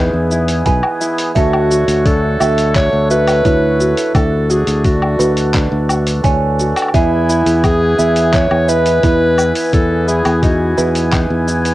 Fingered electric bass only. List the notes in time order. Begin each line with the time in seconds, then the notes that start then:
0.13 E2
0.66 B1
1.36 D2
1.88 D2
2.40 D2
2.93 D2
3.45 D2
4.15 D2
4.67 D2
5.19 D2
5.72 D2
6.24 D2
6.94 E2
7.46 E2
7.99 E2
8.51 E2
9.03 E2
9.73 E2
10.26 E2
10.78 E2
11.30 E2